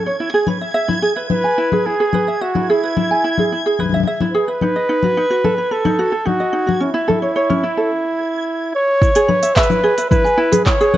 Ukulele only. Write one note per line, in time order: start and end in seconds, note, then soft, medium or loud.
0.06 0.15 C#5 medium
0.20 0.28 E4 medium
0.34 0.47 G#4 medium
0.48 0.60 B4 medium
0.61 0.70 E5 medium
0.74 0.87 E5 medium
0.88 1.01 E4 medium
1.02 1.15 G#4 medium
1.16 1.29 B4 medium
1.31 1.43 E4 medium
1.44 1.57 G#5 medium
1.58 1.71 E4 medium
1.73 1.85 G#4 medium
1.86 1.94 E4 medium
2.00 2.12 G#4 medium
2.14 2.26 B4 medium
2.28 2.35 E5 medium
2.41 2.54 E5 medium
2.55 2.68 E4 medium
2.70 2.82 G#4 medium
2.84 2.95 B4 medium
2.97 3.09 E4 medium
3.11 3.23 G#5 medium
3.24 3.36 E4 medium
3.39 3.51 G#4 medium
3.52 3.60 E4 medium
3.66 3.78 G#4 medium
3.80 3.92 B4 medium
3.94 4.01 E5 medium
4.07 4.19 E5 medium
4.21 4.33 E4 medium
4.35 4.47 G#4 medium
4.48 4.60 B4 medium
4.62 4.74 D#4 medium
4.76 4.88 D#5 medium
4.89 5.01 D#4 medium
5.04 5.15 F#4 medium
5.17 5.25 D#4 medium
5.30 5.43 F#4 medium
5.44 5.57 A4 medium
5.58 5.66 B4 medium
5.71 5.84 B4 medium
5.85 5.98 D#4 medium
5.99 6.11 F#4 medium
6.12 6.25 A4 medium
6.25 6.38 D#4 medium
6.40 6.52 D#5 medium
6.53 6.66 D#4 medium
6.67 6.80 F#4 medium
6.80 6.89 C#4 medium
6.94 7.07 E4 medium
7.08 7.21 A4 medium
7.22 7.30 C#5 medium
7.36 7.49 C#5 medium
7.50 7.62 C#4 medium
7.63 7.76 E4 medium
7.77 7.90 A4 medium
9.01 9.09 E4 medium
9.16 9.28 G#4 loud
9.28 9.41 B4 loud
9.43 9.51 E5 medium
9.57 9.69 E5 loud
9.70 9.82 E4 medium
9.83 9.96 G#4 loud
9.98 10.10 B4 medium
10.11 10.24 E4 medium
10.24 10.37 G#5 medium
10.38 10.51 E4 loud
10.52 10.65 G#4 medium
10.67 10.75 E4 medium
10.81 10.93 G#4 loud
10.94 10.97 B4 medium